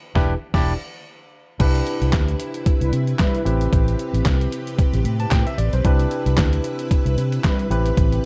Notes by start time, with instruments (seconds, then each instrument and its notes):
0.15 fingered electric bass E1, tine electric piano D4 E4 G4 B4, kick, snare
0.54 fingered electric bass E1, tine electric piano D4 E4 G4 D5, kick, snare, crash
1.59 fingered electric bass C2, tine electric piano D4 E4 G4 B4, string machine B4, kick, closed hi-hat, crash
1.75 closed hi-hat
1.87 closed hi-hat
2.01 fingered electric bass C2, closed hi-hat
2.13 fingered electric bass D2, kick, snare, clap, closed hi-hat
2.28 closed hi-hat
2.40 closed hi-hat
2.54 closed hi-hat
2.66 kick, closed hi-hat
2.81 fingered electric bass C2, analog polysynth G3 E4 B4, closed hi-hat
2.93 fingered electric bass C3, closed hi-hat
3.07 closed hi-hat
3.19 analog polysynth G3 E4 B4, kick, snare, clap, closed hi-hat
3.35 closed hi-hat
3.45 fingered electric bass A1, tine electric piano C4 E4 G4 B4, string machine G4, closed hi-hat
3.61 closed hi-hat
3.73 fingered electric bass A1, kick, closed hi-hat
3.88 closed hi-hat
3.99 closed hi-hat
4.13 fingered electric bass A1, closed hi-hat
4.26 fingered electric bass C2, kick, snare, clap, closed hi-hat
4.41 closed hi-hat
4.52 closed hi-hat
4.67 closed hi-hat
4.79 kick, closed hi-hat
4.93 fingered electric bass A1, closed hi-hat
5.05 fingered electric bass A2, closed hi-hat
5.20 tine electric piano A5, closed hi-hat
5.31 fingered electric bass A2, tine electric piano G5, kick, snare, clap, closed hi-hat
5.47 tine electric piano E5, closed hi-hat
5.58 fingered electric bass A1, tine electric piano D5, closed hi-hat
5.73 fingered electric bass B1, tine electric piano C5, closed hi-hat
5.84 fingered electric bass C2, tine electric piano D4 E4 G4 B4, string machine E4, kick, closed hi-hat
6.00 closed hi-hat
6.11 closed hi-hat
6.26 fingered electric bass C2, closed hi-hat
6.37 fingered electric bass D2, kick, snare, clap, closed hi-hat
6.53 closed hi-hat
6.64 closed hi-hat
6.79 closed hi-hat
6.91 kick, closed hi-hat
7.06 fingered electric bass C2, analog polysynth G3 E4 B4, closed hi-hat
7.17 fingered electric bass C3, closed hi-hat
7.32 closed hi-hat
7.44 analog polysynth G3 E4 B4, kick, snare, clap, closed hi-hat
7.59 closed hi-hat
7.70 fingered electric bass A1, string machine C3 G4, tine electric piano C4 E4 G4 B4, closed hi-hat
7.86 closed hi-hat
7.97 fingered electric bass A1, kick, closed hi-hat
8.12 closed hi-hat